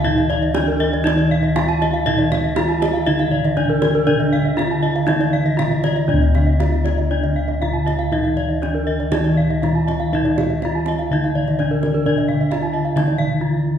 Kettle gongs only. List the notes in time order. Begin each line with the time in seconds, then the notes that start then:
Already playing: D2
0.04 D#4
0.55 D#4
1.06 D#3
1.56 D#4
2.06 D#4
2.57 D#4
3.07 D3
3.58 D#4
4.08 D4
4.58 D#4
5.09 D3
5.59 D#4
6.09 D4
6.13 D2
6.60 D#4
7.61 D#4
8.12 D#4
8.61 D#4
9.12 D#3
9.63 D#4
10.13 D#4
10.62 D#4
11.11 D3
11.60 D#4
12.06 D4
12.96 D3
13.40 D#4